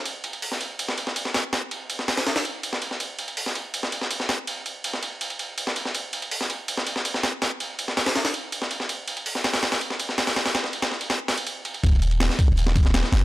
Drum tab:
RD |x-xx--x-x-x-x---|--x-x-----x-x-x-|x-xx--x-x-x-x---|x-x-x-x-xxx-x-x-|
HH |----o---------o-|o-----oooo------|----o---------o-|----------------|
SD |-----o---o-o-oo-|o----ooooo---o-o|-----o---o-o-oo-|-----o-------o-o|
BD |----------------|----------------|----------------|----------------|

RD |x-xx--x-x-x-x---|--x-x-----x-x-x-|x-xx------x-x---|--x-xx-x---xx-xx|
HH |----o---------o-|o-----oooo------|----o-oooo----oo|oo------o-o-----|
SD |-----o---o-o-oo-|o----ooooo---o-o|-----ooooo-o-ooo|oooo-oo-o-o-----|
BD |----------------|----------------|----------------|----------------|

RD |x-xx--x-x-x-x---|
HH |----o---------o-|
SD |----oo---o-oooo-|
BD |o-----o---o-----|